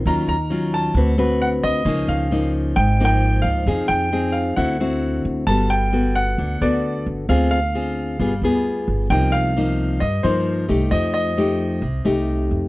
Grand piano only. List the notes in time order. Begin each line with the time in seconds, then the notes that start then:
0.07 A#5
0.29 A#5
0.74 A5
1.42 F#5
1.63 D#5
2.09 F5
2.76 G5
3.05 G5
3.42 F5
3.88 G5
4.32 F5
4.56 F#5
5.47 A5
5.70 G5
6.15 F#5
6.62 D5
7.29 F5
7.51 F5
9.10 G5
9.32 F5
10.00 D#5
10.23 C5
10.91 D#5
11.14 D#5